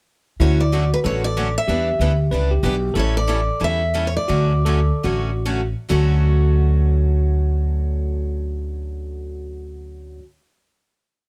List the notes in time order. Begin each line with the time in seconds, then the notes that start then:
0.40 D2 D3 F#3 A3 C#4 E4 F#4 A4 C#5
0.60 D5
0.72 D3 F#3 A3 C#4 F#4 A4
0.94 B4
1.04 A1 D3 F#3 A3 C#4 F#4 A4 C#5
1.24 D5
1.37 D3 F#3 A3 C#4 F#4 A4
1.58 E5
1.68 E2 E3 G3 B3 D4 E4 G4 B4
1.99 D2 E3 G3 B3 D4 E4 G4 B4
2.31 C#2 E3 G3 B3 D4 E4 G4 B4
2.51 G4
2.63 B1 E3 G3 B3 D4 E4 G4 B4
2.94 A1 E3 G3 C#4 E4 A4
2.99 C#5
3.17 D5
3.29 E3 G3 C#4 E4 A4
3.60 E2 E3 G3 C#4 E4 A4
3.64 E5
3.94 E3 G3 C#4 E4 A4
4.07 C#5
4.17 D5
4.28 D2 D3 F#3 A3 C#4 F#4 A4
4.65 D3 F#3 A3 C#4 F#4 A4
5.03 A1 D3 F#3 A3 C#4 F#4 A4
5.45 D3 F#3 A3 C#4 F#4 A4
5.89 D2 D3 F#3 A3 C#4 F#4 A4